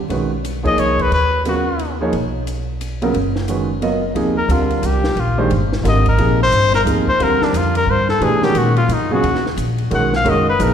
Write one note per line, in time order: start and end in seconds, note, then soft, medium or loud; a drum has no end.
0.08 0.73 B1 medium
0.08 0.29 D#3 medium
0.08 0.29 G#3 soft
0.08 0.29 C#4 soft
0.08 0.29 F#4 soft
0.08 0.29 B4 medium
0.08 ride medium
0.45 hi-hat pedal medium
0.45 ride medium
0.63 1.08 F3 medium
0.63 1.08 A#3 medium
0.63 1.08 D#4 medium
0.63 1.08 G#4 medium
0.63 1.09 C#5 medium
0.63 0.81 D#5 loud
0.63 kick medium
0.63 ride soft
0.77 1.08 C2 medium
0.77 1.03 C#5 medium
0.77 hi-hat pedal soft
0.77 ride medium
0.99 1.13 B4 medium
0.99 kick medium
0.99 ride soft
1.11 2.08 D#2 medium
1.11 1.44 B4 medium
1.11 ride medium
1.45 1.64 C#3 medium
1.45 1.64 F#3 soft
1.45 1.64 B3 soft
1.45 1.65 F4 soft
1.45 1.98 F#4 medium
1.45 1.65 A#4 medium
1.45 hi-hat pedal medium
1.45 ride medium
1.79 ride medium
2.01 2.12 F3 medium
2.01 2.12 A#3 medium
2.01 2.12 D#4 medium
2.01 2.12 G#4 medium
2.01 2.12 C#5 medium
2.13 3.10 B1 medium
2.13 ride medium
2.47 hi-hat pedal medium
2.47 ride medium
2.81 hi-hat pedal medium
2.81 ride medium
3.02 3.13 C#3 medium
3.02 3.13 F#3 medium
3.02 3.13 B3 medium
3.02 3.13 F4 medium
3.02 3.14 A#4 medium
3.02 ride soft
3.14 4.11 F#1 medium
3.14 ride medium
3.36 snare soft
3.48 3.68 D#3 medium
3.48 3.67 G#3 soft
3.48 3.67 C#4 medium
3.48 3.68 F#4 medium
3.48 3.68 B4 medium
3.48 hi-hat pedal medium
3.48 ride medium
3.82 4.01 F#3 medium
3.82 4.01 B3 medium
3.82 4.01 F4 medium
3.82 4.01 A#4 medium
3.82 4.01 D#5 medium
3.82 ride medium
4.14 4.48 D#2 medium
4.14 4.34 C3 medium
4.14 4.34 F3 medium
4.14 4.35 A#3 medium
4.14 4.35 D#4 medium
4.14 4.35 G#4 medium
4.14 ride medium
4.38 4.54 A#4 medium
4.48 4.82 D2 medium
4.48 5.00 D3 medium
4.48 5.00 G3 soft
4.48 5.00 C4 soft
4.48 5.00 F4 medium
4.48 5.01 A#4 medium
4.48 hi-hat pedal medium
4.48 ride medium
4.52 4.87 F4 medium
4.70 ride soft
4.82 5.15 C2 medium
4.82 5.21 G4 medium
4.82 hi-hat pedal medium
4.82 ride medium
5.04 snare medium
5.16 5.49 A#1 medium
5.16 5.40 F4 medium
5.16 ride medium
5.38 5.49 D#3 medium
5.38 5.49 G#3 medium
5.38 5.50 D4 medium
5.38 5.50 G4 medium
5.38 5.50 C5 medium
5.50 5.83 G1 medium
5.50 ride medium
5.73 snare medium
5.83 6.17 G#1 medium
5.83 6.03 D3 medium
5.83 6.03 G3 medium
5.83 6.04 C4 medium
5.83 6.04 F4 medium
5.83 6.04 A#4 medium
5.83 snare soft
5.83 hi-hat pedal medium
5.83 ride medium
5.88 6.06 D#5 medium
6.06 6.39 A#4 medium
6.06 kick medium
6.06 ride medium
6.18 6.51 A#1 medium
6.18 6.37 C3 medium
6.18 6.37 F3 medium
6.18 6.37 A#3 soft
6.18 6.37 D#4 soft
6.18 6.38 G#4 medium
6.18 ride medium
6.43 6.73 C5 loud
6.51 6.84 G1 loud
6.51 hi-hat pedal medium
6.51 ride medium
6.74 6.82 A#4 loud
6.74 snare soft
6.74 ride soft
6.85 7.18 D2 medium
6.85 7.05 C3 medium
6.85 7.05 F3 medium
6.85 7.05 A#3 medium
6.85 7.05 D#4 medium
6.85 7.05 G#4 medium
6.85 hi-hat pedal medium
6.85 ride medium
7.08 7.25 C5 loud
7.08 kick soft
7.19 7.39 D#2 medium
7.19 8.14 D3 medium
7.19 8.14 G3 medium
7.19 8.14 C4 medium
7.19 8.14 F4 medium
7.19 8.14 A#4 medium
7.19 7.46 A#4 medium
7.19 ride medium
7.40 7.59 D4 medium
7.40 muted upright bass stroke soft
7.40 snare medium
7.53 7.86 F2 medium
7.53 hi-hat pedal medium
7.53 ride medium
7.57 7.77 F4 medium
7.75 7.92 A#4 loud
7.75 ride medium
7.86 8.20 G2 medium
7.91 8.09 C5 medium
8.09 8.25 A4 medium
8.09 snare soft
8.20 8.54 B2 medium
8.20 8.40 E3 medium
8.20 8.41 A3 medium
8.20 8.41 D4 medium
8.20 8.41 G4 medium
8.20 8.46 G#4 medium
8.20 8.41 B4 medium
8.20 ride medium
8.42 8.72 D#3 medium
8.42 8.72 G#3 medium
8.42 8.72 C#4 medium
8.42 8.73 F#4 medium
8.42 8.59 G4 medium
8.42 8.73 A#4 medium
8.42 snare medium
8.54 8.88 A#2 medium
8.54 8.77 F#4 medium
8.54 hi-hat pedal medium
8.54 ride medium
8.76 8.95 F4 medium
8.76 ride soft
8.88 9.21 F#2 medium
8.88 hi-hat pedal medium
8.88 ride medium
8.93 9.12 D#4 medium
9.11 9.22 C#3 medium
9.11 9.22 F#3 medium
9.11 9.22 B3 medium
9.11 9.22 F4 medium
9.11 9.44 F#4 medium
9.11 9.22 G#4 medium
9.23 9.56 D#2 medium
9.23 ride medium
9.35 snare soft
9.46 snare soft
9.57 9.90 A#1 medium
9.57 hi-hat pedal medium
9.57 ride medium
9.78 ride soft
9.91 10.24 B1 medium
9.91 10.10 D#3 medium
9.91 10.10 G#3 medium
9.91 10.10 C#4 medium
9.91 10.10 F#4 medium
9.91 10.11 A#4 medium
9.91 ride medium
9.95 10.13 F#5 medium
10.13 10.31 F5 loud
10.13 snare medium
10.24 10.57 F#1 medium
10.24 10.43 D#3 medium
10.24 10.44 G#3 medium
10.24 10.44 C#4 medium
10.24 10.44 F#4 medium
10.24 10.44 A#4 medium
10.24 ride medium
10.30 10.48 D#5 medium
10.50 10.64 B4 loud
10.59 10.74 A#1 medium
10.59 10.74 A#2 medium
10.59 10.74 F3 medium
10.59 10.74 D#4 medium
10.59 10.74 G#4 medium
10.59 10.74 A#4 medium
10.59 10.74 B4 medium
10.59 hi-hat pedal medium
10.59 ride medium